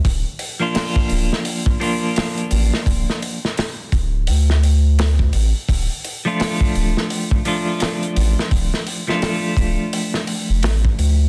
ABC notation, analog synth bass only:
X:1
M:4/4
L:1/16
Q:"Swing 16ths" 1/4=85
K:Dm
V:1 name="Analog synth bass" clef=bass
D,,, z4 z D,,, z6 z A,,, z | D,,, z4 z D,,,2 D,,6 A,,, z | D,,, z4 z D,,, z6 z A,,, z | D,,, z4 z D,,, z4 F,,, A,,,2 D,,2 |]